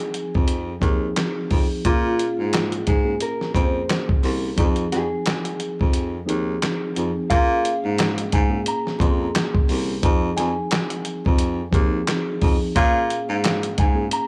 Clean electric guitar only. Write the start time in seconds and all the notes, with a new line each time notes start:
Already playing: G#4
1.86 F4
2.89 G#4
3.22 A#4
3.56 C5
4.92 G#4
7.30 F5
8.34 G#5
8.68 A#5
9.01 C6
10.37 G#5
12.77 F5
13.80 G#5
14.13 A#5